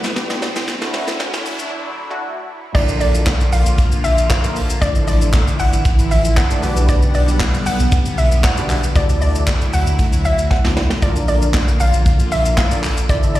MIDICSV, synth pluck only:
0, 0, Header, 1, 2, 480
1, 0, Start_track
1, 0, Tempo, 517241
1, 631, Time_signature, 4, 2, 24, 8
1, 12434, End_track
2, 0, Start_track
2, 0, Title_t, "Synth pluck"
2, 0, Program_c, 0, 84
2, 2548, Note_on_c, 0, 74, 106
2, 2757, Note_off_c, 0, 74, 0
2, 2789, Note_on_c, 0, 74, 85
2, 2998, Note_off_c, 0, 74, 0
2, 3272, Note_on_c, 0, 77, 91
2, 3479, Note_off_c, 0, 77, 0
2, 3749, Note_on_c, 0, 76, 84
2, 3957, Note_off_c, 0, 76, 0
2, 3992, Note_on_c, 0, 77, 79
2, 4337, Note_off_c, 0, 77, 0
2, 4468, Note_on_c, 0, 74, 105
2, 4677, Note_off_c, 0, 74, 0
2, 4711, Note_on_c, 0, 74, 81
2, 4918, Note_off_c, 0, 74, 0
2, 5193, Note_on_c, 0, 78, 90
2, 5400, Note_off_c, 0, 78, 0
2, 5672, Note_on_c, 0, 76, 82
2, 5879, Note_off_c, 0, 76, 0
2, 5913, Note_on_c, 0, 78, 81
2, 6257, Note_off_c, 0, 78, 0
2, 6393, Note_on_c, 0, 74, 105
2, 6600, Note_off_c, 0, 74, 0
2, 6632, Note_on_c, 0, 74, 85
2, 6839, Note_off_c, 0, 74, 0
2, 7112, Note_on_c, 0, 78, 88
2, 7319, Note_off_c, 0, 78, 0
2, 7591, Note_on_c, 0, 76, 87
2, 7798, Note_off_c, 0, 76, 0
2, 7833, Note_on_c, 0, 78, 81
2, 8177, Note_off_c, 0, 78, 0
2, 8315, Note_on_c, 0, 74, 105
2, 8520, Note_off_c, 0, 74, 0
2, 8553, Note_on_c, 0, 74, 87
2, 8759, Note_off_c, 0, 74, 0
2, 9034, Note_on_c, 0, 78, 89
2, 9240, Note_off_c, 0, 78, 0
2, 9514, Note_on_c, 0, 76, 84
2, 9720, Note_off_c, 0, 76, 0
2, 9750, Note_on_c, 0, 78, 81
2, 10096, Note_off_c, 0, 78, 0
2, 10232, Note_on_c, 0, 74, 102
2, 10439, Note_off_c, 0, 74, 0
2, 10471, Note_on_c, 0, 74, 84
2, 10678, Note_off_c, 0, 74, 0
2, 10953, Note_on_c, 0, 77, 85
2, 11160, Note_off_c, 0, 77, 0
2, 11431, Note_on_c, 0, 76, 83
2, 11639, Note_off_c, 0, 76, 0
2, 11675, Note_on_c, 0, 77, 81
2, 12018, Note_off_c, 0, 77, 0
2, 12152, Note_on_c, 0, 74, 104
2, 12359, Note_off_c, 0, 74, 0
2, 12393, Note_on_c, 0, 74, 85
2, 12434, Note_off_c, 0, 74, 0
2, 12434, End_track
0, 0, End_of_file